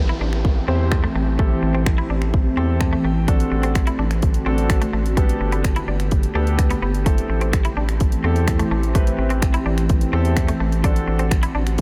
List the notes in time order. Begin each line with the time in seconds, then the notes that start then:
Already playing: A1 E3 A3 C4 G4, downlifter
0.09 E4
0.21 A1 D4
0.33 finger snap
0.45 kick
0.68 E2 C4 E4 G4 C5
0.92 finger snap, muted clean electric guitar stroke, kick
1.04 A3
1.15 A1 A3
1.39 A3 C4 E4 G4 A4, kick
1.63 A1, muted clean electric guitar stroke
1.75 C4
1.86 finger snap, muted clean electric guitar stroke, kick
1.98 E4
2.10 A1 D4
2.22 finger snap
2.34 kick
2.57 E2 C4 E4 G4 A4
2.81 A5, finger snap, muted clean electric guitar stroke, kick
2.93 A3
3.05 A1 A3 G5
3.28 D3 C4 D4 F#4 A4, kick, closed hi-hat
3.40 closed hi-hat
3.52 A1, muted clean electric guitar stroke
3.63 C4, closed hi-hat
3.75 finger snap, muted clean electric guitar stroke, kick, closed hi-hat
3.87 E4, closed hi-hat
3.99 A1 D4
4.11 finger snap, closed hi-hat
4.22 kick, closed hi-hat
4.34 closed hi-hat
4.46 A1 C4 D4 F#4 A4
4.58 closed hi-hat
4.70 finger snap, muted clean electric guitar stroke, kick, closed hi-hat
4.82 A3, closed hi-hat
4.93 A1 A3
5.06 closed hi-hat
5.17 D3 G3 B3 D4 G4 A4, kick, closed hi-hat
5.29 closed hi-hat
5.41 G1, muted clean electric guitar stroke
5.52 B3, closed hi-hat
5.64 finger snap, muted clean electric guitar stroke, kick, closed hi-hat
5.76 E4, closed hi-hat
5.88 G1 D4
6.00 finger snap, closed hi-hat
6.11 kick, closed hi-hat
6.23 closed hi-hat
6.35 D2 B3 D4 G4 A4
6.47 closed hi-hat
6.59 finger snap, muted clean electric guitar stroke, kick, closed hi-hat
6.70 B3, closed hi-hat
6.82 G1 B3
6.95 closed hi-hat
7.06 E3 A3 C4 E4 G4 A4, kick, closed hi-hat
7.18 closed hi-hat
7.30 A1, muted clean electric guitar stroke
7.41 C4, closed hi-hat
7.53 finger snap, muted clean electric guitar stroke, kick, closed hi-hat
7.65 E4, closed hi-hat
7.77 A1 D4
7.89 finger snap, closed hi-hat
8.00 kick, closed hi-hat
8.12 closed hi-hat
8.24 E2 C4 E4 G4 A4
8.36 closed hi-hat
8.48 finger snap, muted clean electric guitar stroke, kick, closed hi-hat
8.59 A3, closed hi-hat
8.71 A1 A3
8.83 closed hi-hat
8.95 A3 C4 E4 G4 B4, kick, closed hi-hat
9.07 closed hi-hat
9.19 A1, muted clean electric guitar stroke
9.30 C4, closed hi-hat
9.42 finger snap, muted clean electric guitar stroke, kick, closed hi-hat
9.54 E4, closed hi-hat
9.66 A1 D4
9.78 finger snap, closed hi-hat
9.89 kick, closed hi-hat
10.01 closed hi-hat
10.13 E2 C4 E4 G4 A4
10.25 closed hi-hat
10.37 finger snap, muted clean electric guitar stroke, kick, closed hi-hat
10.48 A3, closed hi-hat
10.60 A1 A3
10.72 closed hi-hat
10.84 D3 A3 C4 D4 F#4 A4, kick, closed hi-hat
10.96 closed hi-hat
11.08 A1, muted clean electric guitar stroke
11.19 C4, closed hi-hat
11.31 finger snap, muted clean electric guitar stroke, kick, closed hi-hat
11.43 E4, closed hi-hat
11.55 A1 D4
11.67 finger snap, closed hi-hat